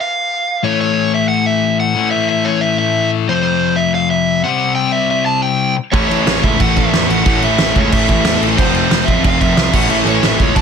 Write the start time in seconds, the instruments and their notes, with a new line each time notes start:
0.01 overdriven electric guitar F5
0.63 distorted electric guitar A2 E3 A3, overdriven electric guitar C#5
0.81 overdriven electric guitar C#5
1.14 overdriven electric guitar E5
1.28 overdriven electric guitar F#5
1.46 overdriven electric guitar E5
1.80 overdriven electric guitar F#5
1.95 distorted electric guitar A2 E3 A3
2.11 overdriven electric guitar E5
2.29 overdriven electric guitar E5
2.45 overdriven electric guitar C#5
2.61 overdriven electric guitar E5
2.79 overdriven electric guitar E5
3.28 distorted electric guitar F2 C3 F3, overdriven electric guitar C5
3.43 overdriven electric guitar C5
3.76 overdriven electric guitar E5
3.94 overdriven electric guitar F5
4.11 overdriven electric guitar E5
4.44 distorted electric guitar C3 G3 C4, overdriven electric guitar F#5
4.75 overdriven electric guitar G5
4.92 overdriven electric guitar E5
5.11 overdriven electric guitar E5
5.26 overdriven electric guitar A5
5.42 overdriven electric guitar G5
5.92 picked electric bass A1, distorted electric guitar A2 E3 A3 C#4 E4, overdriven electric guitar C#5, kick, crash
6.08 picked electric bass A1, overdriven electric guitar C#5, crash
6.27 picked electric bass A1, snare, crash
6.42 picked electric bass C#2, distorted electric guitar A2 E3 A3 C#4 E4, overdriven electric guitar E5, kick, crash
6.60 picked electric bass A1, overdriven electric guitar F#5, kick, crash
6.76 picked electric bass A1, overdriven electric guitar E5, kick, crash
6.93 picked electric bass E2, distorted electric guitar A2 E3 A3 C#4 E4, snare, crash
7.09 picked electric bass A1, overdriven electric guitar F#5, crash
7.24 picked electric bass A1, distorted electric guitar A2 E3 A3 C#4 E4, kick, crash
7.42 picked electric bass A1, overdriven electric guitar E5, crash
7.59 picked electric bass A1, overdriven electric guitar E5, snare, crash
7.74 picked electric bass C#2, distorted electric guitar A2 E3 A3 C#4 E4, overdriven electric guitar C#5, kick, crash
7.92 picked electric bass A1, overdriven electric guitar E5, kick, crash
8.09 picked electric bass A1, overdriven electric guitar E5, kick, crash
8.24 picked electric bass E2, distorted electric guitar A2 E3 A3 C#4 E4, snare, crash
8.41 picked electric bass A1, crash
8.57 picked electric bass F1, distorted electric guitar F2 C3 F3 A3 C4 F4, overdriven electric guitar C5, kick, crash
8.73 picked electric bass F1, overdriven electric guitar C5, crash
8.90 picked electric bass F1, snare, crash
9.05 picked electric bass A1, distorted electric guitar C4 F4, overdriven electric guitar E5, kick, crash
9.09 distorted electric guitar F3 A3
9.24 picked electric bass F1, overdriven electric guitar F5, kick, crash
9.41 picked electric bass F1, overdriven electric guitar E5, kick, crash
9.56 picked electric bass C2, distorted electric guitar F3 A3 C4 F4, snare, crash
9.72 picked electric bass A1, distorted electric guitar A2 E3 A3 C#4 E4, overdriven electric guitar F#5, kick, crash
9.89 picked electric bass A1, overdriven electric guitar E5, crash
10.05 picked electric bass A1, overdriven electric guitar C#5, crash
10.22 picked electric bass A1, distorted electric guitar A2 E3 A3 C#4 E4, overdriven electric guitar E5, snare, crash
10.40 picked electric bass C#2, overdriven electric guitar C#5, kick, crash
10.55 picked electric bass A1, overdriven electric guitar A5, kick, crash